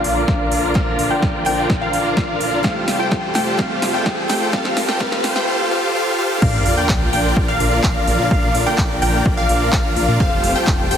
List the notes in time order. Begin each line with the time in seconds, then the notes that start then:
Already playing: D3 F3 A#3 D4 F4 A#4 D5 F5, riser
0.04 A#1, open hi-hat
0.28 A#1 D4 F4 D5 F5, kick, snare
0.52 A#1, open hi-hat
0.63 A#1
0.74 A#1 D3 F3 A#3 D4 F4 D5 F5, kick, snare
0.99 A#1, open hi-hat
1.11 D4 F4 A#4 D5 G5
1.22 A#1, kick, snare
1.45 A#1 D3 F3 A#3 D4 F4 A#4 D5 G5, open hi-hat
1.70 A#1, kick, snare
1.81 D4 F4 A#4 D5 F5
1.93 A#1, open hi-hat
2.17 A#1 D4 F4 A#4 D5 F5, kick, snare
2.40 A#1, open hi-hat
2.52 A#1
2.63 F1 C3 G3 A3 F4 C5 F5, kick, snare
2.88 F1, snare, open hi-hat
3.00 F4 G4 A4 C5 G5
3.11 F1, kick, snare
3.34 F1 C3 G3 A3 F4 G4 A4 C5 G5, snare, open hi-hat
3.57 F1 C3 G3 A3 F4 G4 A4 C5 F5, kick, snare
3.82 F1, snare, open hi-hat
3.94 F4 G4 A4 C5 G5
4.06 F1, kick, snare
4.28 F1 C3 G3 A3 F4 G4 A4 C5 G5, snare, open hi-hat
4.41 F1
4.52 F1 C3 G3 A3 F4 G4 A4 C5 F5, kick, snare
4.65 snare
4.77 F1, snare, open hi-hat
4.88 F4 G4 A4 C5 G5, snare
4.99 F1 C3 G3 A3 F4 G4 A4 C5 F5, kick, snare
5.12 snare
5.24 F1, snare, open hi-hat
5.36 F4 G4 A4 C5 G5, snare
5.48 F4 G4 A4 C5 F5
5.71 F4 G4 A4 C5 F5
5.95 F4 G4 A4 C5 F5
6.18 F4 G4 A4 C5 F5
6.42 A#1 D3 F3 A#3 D4 F4 D5 F5, kick, crash, sub drop
6.66 A#1, open hi-hat
6.77 D4 F4 A#4 D5 G5
6.89 A#1, kick, clap
7.13 A#1 D4 F4 A#4 D5 G5, open hi-hat
7.37 A#1, kick
7.48 D4 F4 A#4 D5 F5
7.60 A#1, open hi-hat
7.84 A#1 F5, kick, clap
8.07 A#1, open hi-hat
8.19 A#2
8.31 A#1 D4 F4 D5 F5, kick
8.54 A#1, open hi-hat
8.66 D4 F4 A#4 D5 G5
8.78 A#1, kick, clap
9.02 A#1 D4 F4 A#4 D5 G5, open hi-hat
9.26 A#1, kick
9.37 D4 F4 A#4 D5 F5
9.49 A#1, open hi-hat
9.73 A#1 F4 F5, kick, clap
9.96 A#1, open hi-hat
10.08 A#2
10.20 F1 C3 G3 A3 F4 G4 A4 C5 F5, kick
10.44 F1, open hi-hat
10.55 F4 G4 A4 C5 G5
10.67 F1, kick, clap
10.91 F1 F4 G4 A4 C5 G5, open hi-hat